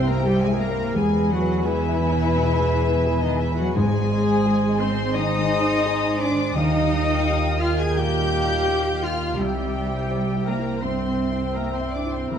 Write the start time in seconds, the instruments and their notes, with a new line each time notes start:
Already playing: double bass section C2, grand piano C2 G2 G3 G4 E5, harp C3 G3 C4 G4 C5, french horn section G4 C5, cor anglais E5, flute section G5
0.00 harp E4, grand piano C5
0.07 cello section A#3, viola section A#4, clarinet A#4, violin section A#5
0.23 cello section G3, grand piano G4, clarinet G4, viola section G4, harp C5, violin section G5
0.43 cello section G#3, viola section G#4, clarinet G#4, violin section G#5
0.48 harp E4, grand piano E5
0.60 cello section A#3, viola section A#4, clarinet A#4, violin section A#5
0.71 harp C4, grand piano C5
0.94 grand piano E2, harp E2, double bass section E2, cello section G#3, viola section G#4, french horn section G#4 B4, clarinet G#4, cor anglais B4, violin section G#5, flute section G#5
1.18 grand piano G#3, harp G#3
1.30 cello section F#3, clarinet F#4, viola section F#4, violin section F#5
1.42 harp E4, grand piano B4
1.65 cello section E3, clarinet E4, viola section E4, grand piano G#4, harp B4, violin section E5
1.89 harp E4, grand piano E5
2.12 harp B2, grand piano B4
2.36 grand piano B2
2.59 harp B2, grand piano G#3
2.82 harp E4, grand piano B4
3.06 grand piano G#4, harp B4
3.22 cello section D#3, clarinet D#4, viola section D#4, violin section D#5
3.28 harp E4, grand piano E5
3.40 cello section E3, clarinet E4, viola section E4, violin section E5
3.52 harp B2
3.57 cello section F#3, viola section F#4, clarinet F#4, violin section F#5
3.74 double bass section G#1, harp G#2, grand piano G#2, timpani G#2, cello section G#3, clarinet G#4, viola section G#4, french horn section C5, cor anglais C5, violin section G#5, flute section G#5
3.98 harp G#3, grand piano G#3
4.21 harp C4, grand piano C5
4.46 grand piano G#4
4.69 grand piano D#5
4.79 cello section C4, viola section C5, clarinet C5, violin section C6
4.91 harp D#3, grand piano C5
5.14 grand piano D#3, harp G#3, cello section D#4, cor anglais C5, viola section D#5, clarinet D#5, flute section G#5, violin section D#6
5.38 harp D#3, grand piano G#3
5.61 grand piano C5
5.85 grand piano G#4, harp C5
6.09 grand piano D#5
6.19 cello section D4, viola section D5, clarinet D5, violin section D6
6.31 harp D#3, grand piano C5
6.54 double bass section D#2, grand piano D#2, harp D#3, timpani D#3, cello section D#4, french horn section F4 A#4, viola section D#5, clarinet D#5, cor anglais F5, flute section G5, violin section D#6
6.79 harp G3, grand piano G3
7.02 harp F4, grand piano D#5
7.26 grand piano G4, harp D#5
7.50 harp F4, grand piano F5
7.60 cello section F4, viola section F5, clarinet F5, violin section F6
7.72 harp D#4, grand piano D#5
7.78 cello section G#4, viola section G#5, clarinet G#5, violin section G#6
7.96 grand piano A#2, harp G3, cello section G4, cor anglais F5, viola section G5, flute section G5, clarinet G5, violin section G6
8.20 grand piano G3, harp D#4
8.43 harp F4, grand piano D#5
8.67 grand piano G4, harp D#5
8.91 harp F4, grand piano F5
9.01 cello section F4, clarinet F5, viola section F5, violin section F6
9.14 harp D#4, grand piano D#5
9.36 grand piano C2, double bass section C2, harp C3, cello section G3, french horn section E4 C5, clarinet G4, viola section G4, cor anglais E5, violin section G5, flute section G5
9.62 grand piano C4, harp C4
9.86 harp E4, grand piano E5
10.10 grand piano C5, harp E5
10.34 harp E4, grand piano E5
10.45 cello section A#3, clarinet A#4, viola section A#4, violin section A#5
10.58 harp G3, grand piano E4
10.81 grand piano G2, cello section C4, harp C4, viola section C5, clarinet C5, cor anglais E5, flute section G5, violin section C6
11.06 harp G3, grand piano C4
11.31 harp E4, grand piano E5
11.55 cello section A#3, clarinet A#4, viola section A#4, grand piano C5, harp E5, violin section A#5
11.72 cello section C4, clarinet C5, viola section C5, violin section C6
11.80 harp E4, grand piano E5
11.92 cello section D4, clarinet D5, viola section D5, violin section D6
12.05 harp G3, grand piano E4
12.11 cello section C4, viola section C5, clarinet C5, violin section C6
12.30 grand piano E2, double bass section E2, harp E3, viola section A#3, cello section A#3, french horn section G#4, clarinet A#4, cor anglais E5, violin section A#5, flute section B5